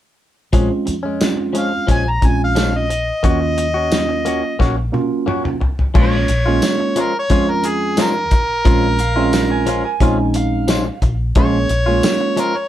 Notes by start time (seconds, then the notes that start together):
0.53 A#1 F3 G#3 C4 C#4 F4, kick, closed hi-hat
0.70 muted clean electric guitar stroke
0.86 F2, muted clean electric guitar stroke, closed hi-hat
1.03 G#3 C#4
1.20 G#3 C4 C#4 F4, snare, closed hi-hat, tambourine
1.37 muted clean electric guitar stroke
1.53 F3 G#3 C#4, closed hi-hat
1.58 F5
1.71 muted clean electric guitar stroke
1.87 A#1 F3 G#3 C#4 G#5, kick, closed hi-hat
2.05 muted clean electric guitar stroke
2.10 A#5
2.21 A#1 G#3 C4 C#4 F4, muted clean electric guitar stroke, kick, closed hi-hat
2.26 G#5
2.44 F5
2.55 F3 G#3 C#4, snare, closed hi-hat, tambourine
2.73 D#5, muted clean electric guitar stroke
2.90 muted clean electric guitar stroke, closed hi-hat
3.23 D#2 F#3 A#3 C#4 F4 F#4, kick, closed hi-hat
3.29 D#5
3.41 muted clean electric guitar stroke
3.57 muted clean electric guitar stroke, closed hi-hat
3.74 C#4 F#4
3.91 F#3 A#3 C#4 F4, snare, closed hi-hat, tambourine
4.09 muted clean electric guitar stroke
4.25 A#3 C#4 F#4, closed hi-hat
4.43 muted clean electric guitar stroke
4.59 A#1 A#3 C#4 F#4, kick, snare
4.77 muted clean electric guitar stroke
4.92 F#3 A#3 C#4 F4, muted clean electric guitar stroke, high tom
5.26 A#3 C#4 F#4, mid tom
5.44 muted clean electric guitar stroke, mid tom
5.61 muted clean electric guitar stroke, floor tom
5.79 floor tom
5.94 A#1 F3 G#3 A#3 C#4 F4, kick, crash
6.00 C#5
6.28 A#1, muted clean electric guitar stroke, closed hi-hat
6.46 G#3 A#3 C#4 F4
6.62 muted clean electric guitar stroke, snare, closed hi-hat, tambourine
6.80 muted clean electric guitar stroke
6.96 F3 G#3 C#4 F4, closed hi-hat
7.00 A#4
7.14 muted clean electric guitar stroke
7.19 C#5
7.30 F2 F3 G#3 C4 C#4 F4, kick, closed hi-hat
7.48 A#4, muted clean electric guitar stroke
7.63 muted clean electric guitar stroke, closed hi-hat
7.68 G#4
7.97 F3 G#3 C#4 F4, snare, closed hi-hat, tambourine
8.03 A#4
8.15 muted clean electric guitar stroke
8.31 A#1, muted clean electric guitar stroke, kick, closed hi-hat
8.65 A#1 F3 G#3 C4 C#4 F4, kick, closed hi-hat
8.98 F5, muted clean electric guitar stroke, closed hi-hat
9.16 G#3 C4 C#4 F4 F5
9.33 muted clean electric guitar stroke, snare, closed hi-hat, tambourine
9.50 G#5, muted clean electric guitar stroke
9.66 F3 G#3 C#4 F4, closed hi-hat
9.85 G#5, muted clean electric guitar stroke
10.00 A#1 F3 G#3 C4 C#4 D#4 F4, kick, closed hi-hat
10.19 muted clean electric guitar stroke
10.34 F5, muted clean electric guitar stroke, closed hi-hat
10.68 F3 G#3 C#4 F4, snare, closed hi-hat, tambourine
10.86 muted clean electric guitar stroke
11.02 A#1, muted clean electric guitar stroke, kick, closed hi-hat
11.35 A#1 F3 G#3 A#3 C#4 F4 G#4 C#5, kick, closed hi-hat
11.69 A#1, muted clean electric guitar stroke, closed hi-hat
11.86 G#3 A#3 C#4 F4
12.03 muted clean electric guitar stroke, snare, closed hi-hat, tambourine
12.21 muted clean electric guitar stroke
12.36 F3 G#3 C#4 F4 A#4, closed hi-hat
12.54 C#5, muted clean electric guitar stroke